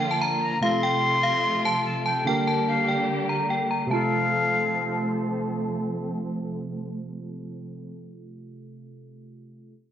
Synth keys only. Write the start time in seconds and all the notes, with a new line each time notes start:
Already playing: D3 A#3 F4 A#4
0.60 C3 A3 F4
0.65 A4
2.24 D3 A#3 G4
2.29 A#4
3.87 C3 A3
3.93 F4 A4